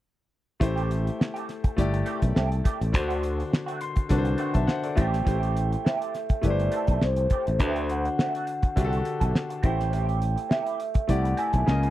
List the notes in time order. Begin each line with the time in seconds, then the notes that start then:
0.60 A1 A3 E4 G4 C5, muted clean electric guitar stroke, kick, closed hi-hat
0.76 A3 C4 G4, closed hi-hat
0.90 muted clean electric guitar stroke, closed hi-hat
1.05 muted clean electric guitar stroke, closed hi-hat
1.19 muted clean electric guitar stroke, snare
1.34 A3 C4 G4, closed hi-hat
1.47 muted clean electric guitar stroke, snare, closed hi-hat
1.64 muted clean electric guitar stroke, kick, closed hi-hat
1.77 G1 A3 E4 G4 D5, muted clean electric guitar stroke, kick, closed hi-hat
1.93 muted clean electric guitar stroke, closed hi-hat
2.05 A3 C4 G4, closed hi-hat
2.21 B1, muted clean electric guitar stroke, kick, closed hi-hat
2.35 C2 A3 C4 G4, snare
2.50 muted clean electric guitar stroke, closed hi-hat
2.64 A3 C4 G4, kick, closed hi-hat
2.80 A1, muted clean electric guitar stroke, closed hi-hat
2.92 D2 D3 D4 F#4 C5, muted clean electric guitar stroke, kick, closed hi-hat
3.08 A3 C4 F#4, closed hi-hat
3.22 muted clean electric guitar stroke, closed hi-hat
3.38 muted clean electric guitar stroke, closed hi-hat
3.51 muted clean electric guitar stroke, snare
3.66 A3 C4 F#4, closed hi-hat
3.80 C6, muted clean electric guitar stroke, closed hi-hat
3.96 muted clean electric guitar stroke, kick, closed hi-hat
4.09 C2 D3 D4 F#4 B4 A5, muted clean electric guitar stroke, kick, closed hi-hat
4.18 C5
4.24 muted clean electric guitar stroke, closed hi-hat
4.38 A3 C4 F#4 F#5 C6, closed hi-hat
4.54 B1 E5 A5, muted clean electric guitar stroke, kick, closed hi-hat
4.67 C5 F#5, muted clean electric guitar stroke, snare
4.84 A4 D5, muted clean electric guitar stroke, closed hi-hat
4.96 A1 A3 C4 E4 G4 C5 E5, kick, closed hi-hat
5.01 G5
5.13 muted clean electric guitar stroke, snare, closed hi-hat
5.24 A1 A3 C4 E4 G4 C5, kick, closed hi-hat
5.43 closed hi-hat
5.57 closed hi-hat
5.71 muted clean electric guitar stroke, closed hi-hat
5.85 A3 C4 G4, snare
5.89 E5
6.02 closed hi-hat
6.14 muted clean electric guitar stroke, snare, closed hi-hat
6.29 muted clean electric guitar stroke, kick, closed hi-hat
6.41 G1 A3 E4 G4 B4, muted clean electric guitar stroke, kick, closed hi-hat
6.46 C5 D5
6.59 muted clean electric guitar stroke, closed hi-hat
6.72 A3 C4 A4, closed hi-hat
6.87 B1 A3 C4 A4, kick, closed hi-hat
7.01 C2 C5, muted clean electric guitar stroke, snare
7.16 muted clean electric guitar stroke, closed hi-hat
7.30 A3 C4 G4, kick, closed hi-hat
7.46 A1, muted clean electric guitar stroke, closed hi-hat
7.59 D2 D3 A3 C4 D4 F#4 B4, kick, closed hi-hat
7.68 C5
7.76 closed hi-hat
7.89 F#5, closed hi-hat
8.04 muted clean electric guitar stroke, closed hi-hat
8.18 A3 C4 F#4, snare
8.35 closed hi-hat
8.47 muted clean electric guitar stroke, closed hi-hat
8.63 muted clean electric guitar stroke, kick, closed hi-hat
8.76 C2 D3 A3 C4 D4 F#4 G4, kick, closed hi-hat
8.85 A4
8.93 closed hi-hat
9.05 muted clean electric guitar stroke, closed hi-hat
9.20 B1 A3 C4 A4, kick, closed hi-hat
9.34 muted clean electric guitar stroke, snare
9.50 muted clean electric guitar stroke, closed hi-hat
9.63 A1 A3 C4 E4 G4 C5 G5, kick, closed hi-hat
9.78 muted clean electric guitar stroke, snare, closed hi-hat
9.91 C4 E4 G4, closed hi-hat
10.09 closed hi-hat
10.22 closed hi-hat
10.36 muted clean electric guitar stroke, closed hi-hat
10.49 C4 E4 G4 E5, snare
10.67 closed hi-hat
10.80 muted clean electric guitar stroke, closed hi-hat
10.94 muted clean electric guitar stroke, kick, closed hi-hat
11.07 C2 A3 E4 G4 D5 F#5, muted clean electric guitar stroke, kick, closed hi-hat
11.23 muted clean electric guitar stroke, closed hi-hat
11.37 C4 E4 A4 G#5, closed hi-hat
11.53 B1 C4 E4 A4, kick, closed hi-hat
11.66 C#2 C#3 A#3 F4 D#5, muted clean electric guitar stroke, snare
11.83 muted clean electric guitar stroke, closed hi-hat